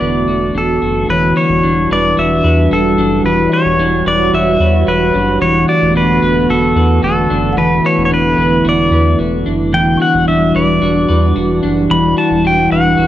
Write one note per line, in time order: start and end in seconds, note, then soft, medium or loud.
0.00 0.24 E1 loud
0.00 1.06 D3 medium
0.00 1.09 E3 medium
0.00 1.06 A3 medium
0.00 1.06 B3 medium
0.00 0.54 D4 soft
0.00 0.27 F#4 medium
0.00 1.05 F#4 medium
0.00 1.91 B4 medium
0.00 0.79 D5 medium
0.27 0.51 E1 medium
0.27 0.82 F#4 soft
0.54 0.78 E1 loud
0.54 1.63 D4 soft
0.54 1.10 A4 medium
0.82 1.06 F#1 medium
0.82 1.35 F#4 soft
1.08 1.32 E1 loud
1.08 5.38 E3 medium
1.08 3.24 E3 medium
1.08 5.38 G3 medium
1.08 3.23 D4 medium
1.08 7.54 F#4 medium
1.08 1.37 B4 medium
1.08 2.27 C#5 medium
1.36 2.17 F#4 medium
1.36 1.92 C#5 medium
1.49 1.61 E1 loud
1.63 1.87 E1 medium
1.63 2.98 D4 medium
1.90 2.14 E1 medium
1.90 2.44 B4 medium
1.90 2.19 D5 loud
2.17 2.41 E1 loud
2.17 2.71 F#4 medium
2.17 2.74 E5 loud
2.44 2.68 E2 medium
2.44 4.06 B4 medium
2.71 2.95 E1 loud
2.71 3.51 F#4 medium
2.71 3.22 A4 loud
2.97 3.21 F#1 medium
2.97 3.79 D4 medium
3.23 3.48 E1 loud
3.23 5.40 E3 medium
3.23 3.53 B4 medium
3.23 5.39 C#5 medium
3.49 4.33 F#4 medium
3.49 4.64 E5 medium
3.53 4.07 C#5 loud
3.65 3.77 E1 loud
3.78 4.02 E1 loud
3.78 5.14 D4 medium
4.06 4.30 E1 loud
4.06 4.60 B4 medium
4.06 4.35 D5 loud
4.33 4.57 E1 loud
4.33 4.86 F#4 medium
4.33 4.90 E5 loud
4.60 4.84 E2 medium
4.60 6.22 B4 medium
4.87 5.11 E1 loud
4.87 5.68 F#4 medium
4.87 5.41 B4 medium
5.14 5.38 F#1 medium
5.14 5.95 D4 medium
5.41 5.65 E1 loud
5.41 9.69 D3 medium
5.41 7.57 E3 medium
5.41 9.70 A3 medium
5.41 9.70 B3 medium
5.41 5.69 C#5 medium
5.68 6.50 F#4 medium
5.68 5.94 D5 medium
5.82 5.94 E1 loud
5.95 6.19 E1 loud
5.95 7.30 D4 medium
5.95 6.52 B4 medium
6.22 6.46 E1 loud
6.22 6.76 B4 medium
6.49 6.73 E1 loud
6.49 7.02 F#4 medium
6.49 7.03 A4 medium
6.76 7.00 E2 medium
6.76 8.38 B4 medium
7.02 7.27 E1 loud
7.02 7.84 F#4 medium
7.02 7.58 A4 medium
7.30 7.54 F#1 medium
7.30 8.11 D4 medium
7.53 7.80 E1 loud
7.53 9.71 E4 loud
7.53 8.68 F#5 medium
7.57 9.72 E3 medium
7.57 7.86 B4 medium
7.57 8.71 A5 medium
7.85 8.64 F#4 medium
7.85 8.04 C#5 medium
7.97 8.10 E1 loud
8.05 8.12 C#5 medium
8.10 8.35 E1 loud
8.10 9.46 D4 medium
8.10 8.68 B4 medium
8.37 8.62 E1 loud
8.37 8.92 B4 medium
8.65 8.89 E1 loud
8.65 9.18 F#4 medium
8.69 9.18 D5 medium
8.91 9.16 E2 medium
8.91 10.54 B4 medium
9.19 9.43 E1 loud
9.19 10.00 F#4 medium
9.46 9.75 F#1 medium
9.46 10.27 D4 medium
9.71 9.97 E1 loud
9.71 13.07 E3 medium
9.71 11.89 E3 medium
9.71 13.07 G3 medium
9.71 13.07 D4 medium
9.71 13.07 F#4 loud
9.71 10.01 G5 loud
9.97 10.81 F#4 medium
9.97 11.12 C#6 medium
10.02 10.27 F#5 loud
10.14 10.26 E1 loud
10.28 10.52 E1 medium
10.28 11.62 D4 medium
10.28 10.56 E5 medium
10.55 10.79 E1 medium
10.55 11.08 B4 medium
10.55 11.60 D5 medium
10.81 11.06 E1 loud
10.81 11.35 F#4 medium
11.08 11.33 E2 medium
11.08 12.71 B4 medium
11.36 11.60 E1 loud
11.36 12.16 F#4 medium
11.63 11.87 F#1 medium
11.63 12.44 D4 medium
11.90 12.14 E1 loud
11.90 13.07 E3 medium
11.90 12.18 B5 medium
12.17 12.97 F#4 medium
12.17 12.45 A5 medium
12.31 12.43 E1 loud
12.44 12.68 E1 loud
12.44 13.07 D4 medium
12.44 12.71 G5 loud
12.71 12.95 E1 loud
12.71 13.07 B4 medium
12.71 13.07 F#5 loud
12.97 13.07 E1 loud
12.97 13.07 F#4 medium